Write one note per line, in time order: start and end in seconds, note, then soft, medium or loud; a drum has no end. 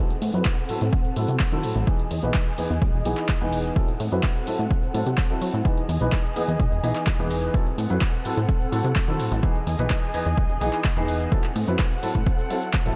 0.00 1.85 C4 medium
0.00 1.85 A4 medium
0.00 1.86 F#5 medium
0.10 0.20 A2 soft
0.10 closed hi-hat medium
0.22 0.31 A2 medium
0.22 open hi-hat loud
0.22 shaker medium
0.34 0.43 F#2 medium
0.34 0.50 F#3 medium
0.34 0.50 C4 medium
0.34 0.50 E4 medium
0.34 0.50 B4 medium
0.34 closed hi-hat medium
0.34 shaker soft
0.45 kick loud
0.45 clap loud
0.45 shaker soft
0.58 shaker soft
0.69 0.79 A2 soft
0.69 0.79 F#3 medium
0.69 0.79 C4 medium
0.69 0.80 E4 medium
0.69 0.80 A4 medium
0.69 open hi-hat loud
0.69 shaker medium
0.81 0.90 A2 medium
0.81 closed hi-hat medium
0.81 shaker soft
0.93 kick loud
0.93 shaker soft
1.05 1.14 A2 soft
1.05 closed hi-hat soft
1.16 1.26 A2 medium
1.16 1.33 F#3 medium
1.16 1.33 C4 medium
1.16 1.33 E4 medium
1.16 1.33 A4 medium
1.16 open hi-hat loud
1.16 shaker medium
1.28 1.37 C3 medium
1.28 closed hi-hat medium
1.28 shaker soft
1.39 kick loud
1.39 clap loud
1.39 shaker soft
1.52 1.65 D#3 medium
1.52 1.84 F#3 loud
1.52 1.85 C4 medium
1.52 1.85 E4 medium
1.52 1.85 A4 loud
1.52 closed hi-hat medium
1.63 1.73 A2 medium
1.63 open hi-hat loud
1.63 shaker medium
1.76 1.84 A1 loud
1.76 closed hi-hat medium
1.76 shaker soft
1.87 1.97 E3 medium
1.87 1.98 B3 medium
1.87 1.98 D#4 medium
1.87 3.74 G#4 medium
1.87 1.98 G#4 loud
1.87 3.74 D#5 medium
1.87 3.74 G#5 medium
1.87 kick loud
1.87 shaker soft
1.99 closed hi-hat soft
2.11 2.20 E2 medium
2.11 open hi-hat loud
2.11 shaker medium
2.23 2.32 B1 medium
2.23 2.39 E3 medium
2.23 2.39 B3 medium
2.23 2.39 D#4 medium
2.23 2.39 B4 medium
2.23 closed hi-hat medium
2.23 shaker soft
2.34 kick loud
2.34 clap loud
2.34 shaker soft
2.47 shaker soft
2.58 2.68 E2 soft
2.58 2.68 E3 medium
2.58 2.68 B3 medium
2.58 2.69 D#4 medium
2.58 2.69 G#4 loud
2.58 open hi-hat loud
2.58 shaker medium
2.70 2.79 E2 medium
2.70 closed hi-hat medium
2.70 shaker soft
2.82 2.91 B1 medium
2.82 kick loud
2.82 shaker soft
2.94 3.03 E1 medium
2.94 closed hi-hat soft
3.05 3.14 B1 medium
3.05 3.21 E3 medium
3.05 3.22 B3 medium
3.05 3.22 D#4 medium
3.05 3.22 G#4 loud
3.05 open hi-hat loud
3.05 shaker medium
3.17 clap soft
3.17 closed hi-hat medium
3.17 shaker soft
3.29 kick loud
3.29 clap loud
3.29 shaker soft
3.41 3.72 E1 medium
3.41 3.73 E3 medium
3.41 3.73 B3 medium
3.41 3.73 D#4 medium
3.41 3.74 G#4 loud
3.41 closed hi-hat soft
3.53 open hi-hat loud
3.53 shaker medium
3.65 closed hi-hat medium
3.65 shaker soft
3.75 3.86 F#3 medium
3.75 3.86 C4 medium
3.75 5.63 C4 medium
3.75 3.86 E4 medium
3.75 3.87 A4 medium
3.75 5.63 A4 medium
3.75 5.63 F#5 medium
3.75 kick loud
3.75 shaker soft
3.88 3.97 A2 soft
3.88 closed hi-hat soft
4.00 4.09 A2 loud
4.00 open hi-hat loud
4.00 shaker medium
4.12 4.21 F#2 medium
4.12 4.28 F#3 medium
4.12 4.28 C4 medium
4.12 4.28 E4 medium
4.12 4.28 B4 medium
4.12 closed hi-hat medium
4.12 shaker soft
4.23 kick loud
4.23 clap loud
4.23 shaker soft
4.36 shaker soft
4.46 4.57 A2 soft
4.46 4.57 F#3 medium
4.46 4.57 C4 medium
4.46 4.57 E4 medium
4.46 4.58 A4 medium
4.46 open hi-hat loud
4.46 shaker medium
4.59 4.68 A2 medium
4.59 closed hi-hat medium
4.59 shaker soft
4.71 kick loud
4.71 shaker soft
4.83 4.92 A2 soft
4.83 closed hi-hat soft
4.94 5.03 A2 medium
4.94 5.10 F#3 medium
4.94 5.10 C4 medium
4.94 5.11 E4 medium
4.94 5.11 A4 loud
4.94 open hi-hat loud
4.94 shaker medium
5.06 5.15 C3 medium
5.06 closed hi-hat medium
5.06 shaker soft
5.18 kick loud
5.18 clap loud
5.18 shaker soft
5.30 5.62 F#3 medium
5.30 5.62 C4 medium
5.30 5.63 E4 medium
5.30 5.63 A4 loud
5.30 closed hi-hat soft
5.41 5.51 F#3 medium
5.41 open hi-hat loud
5.41 shaker medium
5.54 5.62 A2 medium
5.54 closed hi-hat medium
5.54 shaker soft
5.65 5.75 E3 medium
5.65 5.75 B3 medium
5.65 5.76 D#4 medium
5.65 7.52 G#4 medium
5.65 5.76 G#4 loud
5.65 7.52 D#5 medium
5.65 7.52 G#5 medium
5.65 kick loud
5.65 shaker soft
5.78 closed hi-hat soft
5.89 5.98 E2 loud
5.89 open hi-hat loud
5.89 shaker medium
6.00 6.10 B1 medium
6.00 6.17 E3 medium
6.00 6.17 B3 medium
6.00 6.17 D#4 medium
6.00 6.17 B4 medium
6.00 closed hi-hat medium
6.00 shaker soft
6.12 kick loud
6.12 clap loud
6.12 shaker soft
6.25 shaker soft
6.36 6.46 E2 soft
6.36 6.46 E3 medium
6.36 6.46 B3 medium
6.36 6.46 D#4 medium
6.36 6.47 G#4 medium
6.36 open hi-hat loud
6.36 shaker medium
6.48 6.57 E2 medium
6.48 closed hi-hat medium
6.48 shaker soft
6.60 6.69 B1 medium
6.60 kick loud
6.60 shaker soft
6.72 6.80 E1 medium
6.72 closed hi-hat soft
6.83 6.93 B1 medium
6.83 6.99 E3 medium
6.83 7.00 B3 medium
6.83 7.00 D#4 medium
6.83 7.00 G#4 medium
6.83 open hi-hat loud
6.83 shaker medium
6.95 clap soft
6.95 closed hi-hat medium
6.95 shaker soft
7.07 kick loud
7.07 clap loud
7.07 shaker soft
7.19 7.50 E1 medium
7.19 7.51 E3 loud
7.19 7.51 B3 medium
7.19 7.52 D#4 medium
7.19 7.52 G#4 loud
7.19 closed hi-hat soft
7.31 open hi-hat loud
7.31 shaker medium
7.43 closed hi-hat medium
7.43 shaker soft
7.54 7.64 F#3 medium
7.54 9.41 C4 medium
7.54 7.64 C4 medium
7.54 7.65 E4 medium
7.54 9.41 A4 medium
7.54 7.65 A4 loud
7.54 9.41 F#5 medium
7.54 kick loud
7.54 shaker soft
7.67 7.76 A2 soft
7.67 closed hi-hat medium
7.78 7.87 A2 medium
7.78 open hi-hat medium
7.78 shaker medium
7.90 7.99 F#2 medium
7.90 8.06 F#3 medium
7.90 8.06 C4 medium
7.90 8.06 E4 medium
7.90 8.06 B4 medium
7.90 closed hi-hat medium
7.90 shaker soft
8.01 kick loud
8.01 clap loud
8.01 shaker soft
8.14 shaker soft
8.25 8.35 A2 soft
8.25 8.35 F#3 medium
8.25 8.35 C4 medium
8.25 8.35 E4 medium
8.25 8.36 A4 medium
8.25 open hi-hat loud
8.25 shaker medium
8.37 8.46 A2 medium
8.37 closed hi-hat medium
8.37 shaker soft
8.49 kick loud
8.49 shaker soft
8.61 8.70 A2 soft
8.61 closed hi-hat soft
8.72 8.81 A2 medium
8.72 8.88 F#3 medium
8.72 8.88 C4 medium
8.72 8.89 E4 medium
8.72 8.89 A4 medium
8.72 open hi-hat loud
8.72 shaker medium
8.84 8.93 C3 loud
8.84 closed hi-hat medium
8.84 shaker soft
8.96 kick loud
8.96 clap loud
8.96 shaker soft
9.08 9.21 D#3 medium
9.08 9.40 F#3 medium
9.08 9.40 C4 medium
9.08 9.41 E4 medium
9.08 9.41 A4 loud
9.08 closed hi-hat soft
9.20 9.29 A2 medium
9.20 open hi-hat medium
9.20 shaker medium
9.32 9.40 A1 loud
9.32 closed hi-hat medium
9.32 shaker soft
9.43 9.53 E3 medium
9.43 9.54 B3 medium
9.43 9.54 D#4 medium
9.43 11.30 G#4 medium
9.43 9.54 G#4 loud
9.43 11.30 D#5 medium
9.43 11.30 G#5 medium
9.43 kick loud
9.43 shaker soft
9.55 closed hi-hat medium
9.67 9.76 E2 medium
9.67 open hi-hat medium
9.67 shaker medium
9.79 9.88 B1 medium
9.79 9.95 E3 medium
9.79 9.95 B3 medium
9.79 9.95 D#4 medium
9.79 9.95 B4 medium
9.79 closed hi-hat medium
9.79 shaker soft
9.90 kick loud
9.90 clap loud
9.90 shaker soft
10.03 shaker soft
10.14 10.24 E2 soft
10.14 10.24 E3 medium
10.14 10.24 B3 medium
10.14 10.24 D#4 medium
10.14 10.25 G#4 loud
10.14 open hi-hat loud
10.14 shaker medium
10.26 10.35 E2 medium
10.26 closed hi-hat medium
10.26 shaker soft
10.37 10.47 B1 medium
10.37 kick loud
10.37 shaker soft
10.50 10.58 E1 medium
10.50 closed hi-hat soft
10.61 10.70 B1 medium
10.61 10.77 E3 medium
10.61 10.77 B3 medium
10.61 10.78 D#4 medium
10.61 10.78 G#4 loud
10.61 open hi-hat loud
10.61 shaker medium
10.73 clap soft
10.73 closed hi-hat medium
10.73 shaker soft
10.84 kick loud
10.84 clap loud
10.84 shaker soft
10.96 11.28 E1 medium
10.96 11.29 E3 medium
10.96 11.29 B3 medium
10.96 11.29 D#4 medium
10.96 11.29 G#4 loud
10.96 closed hi-hat medium
11.08 open hi-hat medium
11.08 shaker medium
11.21 closed hi-hat medium
11.21 shaker soft
11.32 11.42 F#3 medium
11.32 11.42 C4 medium
11.32 12.96 C4 medium
11.32 11.42 E4 medium
11.32 12.96 A4 medium
11.32 11.43 A4 loud
11.32 12.96 F#5 medium
11.32 kick loud
11.32 shaker soft
11.44 11.53 A2 soft
11.44 clap soft
11.44 closed hi-hat medium
11.56 11.65 A2 loud
11.56 open hi-hat medium
11.56 shaker medium
11.67 11.77 F#2 medium
11.67 11.83 F#3 medium
11.67 11.84 C4 medium
11.67 11.84 E4 medium
11.67 11.84 B4 medium
11.67 closed hi-hat medium
11.67 shaker soft
11.79 kick loud
11.79 clap loud
11.79 shaker soft
11.92 shaker soft
12.02 12.13 A2 soft
12.02 12.13 F#3 medium
12.02 12.13 C4 medium
12.02 12.13 E4 medium
12.02 12.13 A4 loud
12.02 open hi-hat loud
12.02 shaker medium
12.15 12.24 A2 medium
12.15 kick medium
12.15 shaker soft
12.26 kick loud
12.26 shaker soft
12.39 closed hi-hat soft
12.39 shaker soft
12.50 12.66 F#3 medium
12.50 12.66 C4 medium
12.50 12.66 E4 medium
12.50 12.67 A4 loud
12.50 open hi-hat loud
12.50 shaker medium
12.62 closed hi-hat medium
12.62 shaker soft
12.73 kick loud
12.73 clap loud
12.73 shaker soft
12.86 12.95 A1 medium
12.86 12.96 F#3 medium
12.86 12.96 C4 medium
12.86 12.96 E4 medium
12.86 12.96 A4 loud
12.86 closed hi-hat medium
12.86 shaker soft